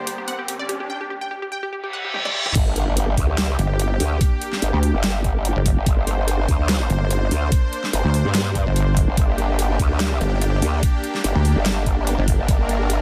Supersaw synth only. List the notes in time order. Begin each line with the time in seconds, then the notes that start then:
Already playing: G2 D3 A#3 G4 C5
2.55 A#3 D4 G4
5.86 C5
9.17 G4
12.48 A#4